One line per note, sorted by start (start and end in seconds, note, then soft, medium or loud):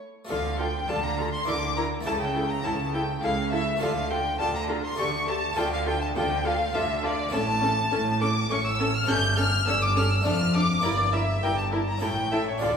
0.00 0.14 A3 soft
0.00 0.23 A3 soft
0.00 0.14 E4 soft
0.00 0.24 E4 soft
0.00 0.14 A4 soft
0.00 0.25 A4 soft
0.25 1.41 A3 medium
0.25 1.42 F4 soft
0.25 1.43 A4 medium
0.29 0.82 D2 medium
0.29 0.78 D3 medium
0.29 0.81 D3 medium
0.29 0.38 F4 medium
0.29 0.37 A4 medium
0.29 0.57 F5 medium
0.29 0.60 F5 medium
0.59 0.67 F4 medium
0.59 0.67 A4 medium
0.59 0.88 G5 medium
0.59 0.90 G5 medium
0.88 1.40 D2 medium
0.88 1.37 D3 soft
0.88 1.40 D3 medium
0.88 0.96 F4 medium
0.88 0.97 A4 medium
0.88 1.03 A5 medium
0.88 1.05 A5 medium
1.03 1.32 A#5 medium
1.18 1.26 F4 medium
1.18 1.26 A4 medium
1.33 1.47 C6 medium
1.43 1.99 D2 medium
1.43 1.96 D3 medium
1.43 2.01 E4 soft
1.43 1.55 E4 medium
1.43 2.03 A#4 soft
1.43 1.76 D6 medium
1.48 1.99 D3 medium
1.48 1.56 A#4 medium
1.48 1.77 D6 loud
1.76 1.84 E4 medium
1.76 1.86 A#4 medium
1.76 1.84 A#5 medium
1.76 1.85 A#5 medium
2.01 3.75 A3 medium
2.01 3.76 E4 medium
2.01 3.76 A4 medium
2.05 2.58 C#2 medium
2.05 2.54 C#3 medium
2.05 2.58 C#3 medium
2.05 2.14 E4 medium
2.05 2.15 A4 medium
2.05 2.20 A5 medium
2.05 2.12 A5 medium
2.21 2.50 G5 medium
2.21 2.51 G5 medium
2.35 2.43 E4 soft
2.35 2.44 A4 medium
2.50 2.65 A#5 medium
2.64 3.16 C#2 medium
2.64 3.13 C#3 medium
2.64 3.16 C#3 medium
2.64 2.73 E4 medium
2.64 2.73 A4 medium
2.64 2.94 A5 medium
2.93 3.01 E4 medium
2.93 3.02 A4 medium
2.93 3.02 G5 medium
2.93 3.23 G5 medium
3.23 3.74 C#2 medium
3.23 3.71 C#3 medium
3.23 3.75 C#3 medium
3.23 3.31 E4 medium
3.23 3.32 A4 medium
3.23 3.51 F5 medium
3.23 3.52 F5 medium
3.52 3.60 E4 medium
3.52 3.61 A4 medium
3.52 3.81 E5 medium
3.52 3.81 E5 loud
3.77 4.93 A3 medium
3.77 4.93 F4 medium
3.77 4.94 A4 medium
3.81 4.33 D2 medium
3.81 4.30 D3 medium
3.81 4.34 D3 medium
3.81 3.90 F4 medium
3.81 3.89 A4 medium
3.81 3.89 F5 medium
3.81 4.12 F5 medium
4.10 4.19 F4 medium
4.10 4.18 A4 medium
4.10 4.39 G5 medium
4.40 4.92 D2 medium
4.40 4.89 D3 medium
4.40 4.92 D3 medium
4.40 4.48 F4 medium
4.40 4.48 A4 medium
4.40 4.54 A5 medium
4.40 4.55 A5 medium
4.55 4.83 A#5 medium
4.55 4.63 A#5 medium
4.69 4.77 F4 medium
4.69 4.77 A4 medium
4.84 5.00 C6 medium
4.84 4.99 C6 medium
4.94 5.52 A3 medium
4.94 5.54 G4 soft
4.94 5.55 A4 medium
4.98 5.50 D2 medium
4.98 5.48 D3 medium
4.98 5.51 D3 medium
4.98 5.07 G4 medium
4.98 5.07 A4 medium
4.98 5.06 C#6 loud
4.98 5.30 C#6 medium
5.27 5.36 G4 medium
5.27 5.36 A4 medium
5.27 5.56 A5 loud
5.27 5.59 A5 medium
5.53 6.09 D2 medium
5.53 7.27 A3 medium
5.53 7.28 F4 medium
5.53 5.65 F4 medium
5.53 7.29 A4 medium
5.53 5.65 A4 medium
5.53 5.72 G5 loud
5.57 6.09 D3 medium
5.57 6.06 D3 medium
5.57 5.72 G5 medium
5.72 5.86 F5 medium
5.72 5.87 F5 medium
5.86 5.94 F4 medium
5.86 5.94 A4 medium
5.86 6.01 G5 medium
6.01 6.07 A5 medium
6.01 6.16 A5 loud
6.15 6.67 D2 medium
6.15 6.64 D3 medium
6.15 6.67 D3 medium
6.15 6.23 F4 medium
6.15 6.24 A4 medium
6.15 6.44 G5 medium
6.15 6.47 G5 medium
6.44 6.52 F4 medium
6.44 6.54 A4 medium
6.44 6.74 F5 loud
6.44 6.76 F5 medium
6.74 7.26 D2 medium
6.74 7.23 D3 medium
6.74 7.27 D3 medium
6.74 6.82 F4 medium
6.74 6.82 A4 medium
6.74 7.03 E5 medium
6.74 7.04 E5 loud
7.03 7.11 F4 medium
7.03 7.11 A4 medium
7.03 7.33 D5 loud
7.03 7.33 D5 medium
7.29 9.02 A3 medium
7.29 9.03 E4 medium
7.29 9.04 C#5 medium
7.33 7.85 A1 medium
7.33 7.82 A2 medium
7.33 7.85 A2 medium
7.33 7.41 C#4 medium
7.33 7.41 A4 medium
7.33 8.19 A5 loud
7.62 7.70 C#4 medium
7.62 7.70 A4 medium
7.91 8.43 A1 medium
7.91 8.40 A2 medium
7.91 8.43 A2 medium
7.91 8.00 C#4 medium
7.91 7.99 A4 medium
8.21 8.29 C#4 medium
8.21 8.29 A4 medium
8.21 8.50 D6 loud
8.21 8.29 D6 medium
8.50 9.02 A1 medium
8.50 8.98 A2 medium
8.50 9.02 A2 medium
8.50 8.58 C#4 medium
8.50 8.58 A4 medium
8.50 8.65 C#6 loud
8.50 8.66 C#6 medium
8.64 8.95 E6 medium
8.64 8.93 E6 loud
8.79 8.87 C#4 medium
8.79 8.87 A4 medium
8.94 9.10 F6 medium
8.94 9.09 F6 loud
9.04 10.20 A3 medium
9.04 10.20 E4 medium
9.04 10.21 C#5 medium
9.08 9.60 G1 medium
9.08 9.60 G2 medium
9.08 9.57 G2 medium
9.08 9.16 C#4 medium
9.08 9.16 A4 medium
9.08 9.39 G6 loud
9.08 9.38 G6 loud
9.37 9.46 C#4 medium
9.37 9.46 A4 medium
9.37 9.66 F6 loud
9.37 9.67 F6 loud
9.67 10.19 G1 medium
9.67 10.19 G2 loud
9.67 10.16 G2 medium
9.67 9.75 C#4 medium
9.67 9.75 A4 medium
9.67 9.73 E6 loud
9.67 9.84 E6 loud
9.82 9.98 D6 loud
9.82 9.97 D6 loud
9.96 10.04 C#4 medium
9.96 10.04 A4 medium
9.96 10.11 F6 loud
9.96 10.12 F6 medium
10.11 10.25 E6 medium
10.11 10.26 E6 loud
10.21 10.80 A3 medium
10.21 10.81 D4 medium
10.21 10.81 D5 medium
10.25 10.77 F1 medium
10.25 10.74 F2 medium
10.25 10.77 F2 medium
10.25 10.33 D4 medium
10.25 10.33 A4 medium
10.25 10.56 F6 loud
10.25 10.55 F6 loud
10.54 10.63 D4 medium
10.54 10.62 A4 medium
10.54 10.84 D6 loud
10.54 10.83 D6 medium
10.80 11.96 A#3 medium
10.80 11.97 E4 medium
10.80 11.98 A#4 medium
10.80 10.92 A#4 medium
10.80 11.15 D5 loud
10.84 11.36 G1 medium
10.84 11.36 G2 medium
10.84 11.33 G2 medium
10.84 10.92 E4 medium
10.84 11.13 D5 loud
11.13 11.22 E4 medium
11.13 11.21 A#4 medium
11.13 11.44 E5 medium
11.13 11.43 E5 medium
11.43 11.95 G1 medium
11.43 11.95 G2 medium
11.43 11.92 G2 medium
11.43 11.51 E4 medium
11.43 11.51 A#4 medium
11.43 11.57 G5 loud
11.43 11.58 G5 loud
11.57 11.87 A5 medium
11.57 11.66 A5 medium
11.72 11.80 E4 medium
11.72 11.80 A#4 medium
11.88 12.04 A#5 medium
11.88 12.02 A#5 medium
11.98 12.58 C#4 medium
11.98 12.59 E4 medium
11.98 12.60 A4 soft
11.98 12.10 A4 medium
12.02 12.55 A1 medium
12.02 12.52 A2 medium
12.02 12.55 A2 medium
12.02 12.10 E4 medium
12.02 12.32 G5 loud
12.02 12.34 G5 medium
12.32 12.40 E4 medium
12.32 12.40 A4 medium
12.32 12.47 E5 loud
12.32 12.47 E5 medium
12.47 12.62 C#5 medium
12.58 12.77 D4 medium
12.58 12.77 F4 medium
12.58 12.69 F4 medium
12.58 12.77 A4 medium
12.58 12.70 A4 medium
12.58 12.77 D5 medium
12.62 12.77 D2 medium
12.62 12.77 D3 medium
12.62 12.77 D5 medium